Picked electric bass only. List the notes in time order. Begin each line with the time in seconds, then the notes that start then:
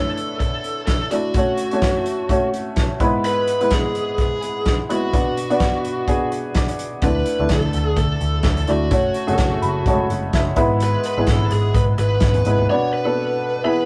7.02 D2
7.39 D2
7.50 D2
7.74 D2
7.97 D2
8.21 D2
8.44 D2
8.69 D2
8.91 F#1
9.29 F#1
9.39 F#1
9.63 F#1
9.86 F#1
10.10 F#1
10.34 F#1
10.56 G#1
11.17 G#1
11.27 G#1
11.51 G#1
11.75 G#1
11.98 G#1
12.22 G#1
12.45 G#1